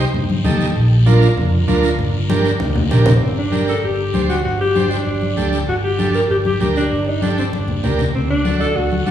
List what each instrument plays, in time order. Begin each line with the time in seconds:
0.14 fingered electric bass G2, low conga, long guiro
0.29 high conga
0.44 fingered electric bass D#2, transistor combo organ D#4 G4 A4, high conga, low conga, short guiro
0.61 short guiro
0.76 fingered electric bass A#1, long guiro
1.06 transistor combo organ D4 F4 A#4, high conga, short guiro
1.22 short guiro
1.37 fingered electric bass F2, low conga, long guiro
1.67 fingered electric bass D2, transistor combo organ D4 F4 A#4, high conga, short guiro
1.83 short guiro
1.99 fingered electric bass G1, low conga, long guiro
2.29 transistor combo organ D4 G4 A#4, high conga, short guiro
2.45 short guiro
2.60 fingered electric bass D2, low conga, long guiro
2.75 low conga
2.91 fingered electric bass A#1, transistor combo organ D4 G4 A#4, low conga, short guiro
3.06 low conga, short guiro
3.22 fingered electric bass G1, alto saxophone C4, long guiro
3.38 alto saxophone D4
3.52 transistor combo organ D4 G4 A#4, high conga, short guiro
3.68 alto saxophone A4, short guiro
3.83 fingered electric bass G1, alto saxophone G4, long guiro
4.14 fingered electric bass D2, transistor combo organ D4 G4 C5, high conga, short guiro
4.29 alto saxophone F#4, short guiro
4.45 fingered electric bass G1, alto saxophone F#4, long guiro
4.61 alto saxophone G4
4.75 transistor combo organ D4 G4 C5, high conga, short guiro
4.91 alto saxophone D4, short guiro
5.07 fingered electric bass G1, long guiro
5.22 high conga
5.36 fingered electric bass D2, transistor combo organ D4 G4 A4, high conga, short guiro
5.53 short guiro
5.68 fingered electric bass G1, alto saxophone F#4, long guiro
5.84 alto saxophone G4
5.98 transistor combo organ D4 G4 A4, high conga, short guiro
6.14 alto saxophone A#4, short guiro
6.30 fingered electric bass G1, alto saxophone G4, long guiro
6.45 alto saxophone G4, high conga
6.60 fingered electric bass D2, transistor combo organ D4 G4 A#4, alto saxophone G4, high conga, short guiro
6.76 alto saxophone D4, short guiro
6.92 fingered electric bass G1, long guiro
7.08 alto saxophone D#4
7.22 transistor combo organ D4 G4 A4, alto saxophone D4, high conga, short guiro
7.38 alto saxophone C4, short guiro
7.53 fingered electric bass G1, alto saxophone D4, high conga, long guiro
7.68 low conga
7.83 fingered electric bass D2, transistor combo organ D4 G4 A#4, low conga, short guiro
7.99 low conga, short guiro
8.15 fingered electric bass D2, alto saxophone C4, long guiro
8.30 alto saxophone D4
8.44 transistor combo organ D4 F#4 A4, high conga, short guiro
8.61 alto saxophone A4, short guiro
8.76 fingered electric bass D2, alto saxophone F#4, long guiro
8.92 high conga
9.06 fingered electric bass A1, transistor combo organ D4 F#4 A4, alto saxophone F#4, high conga, short guiro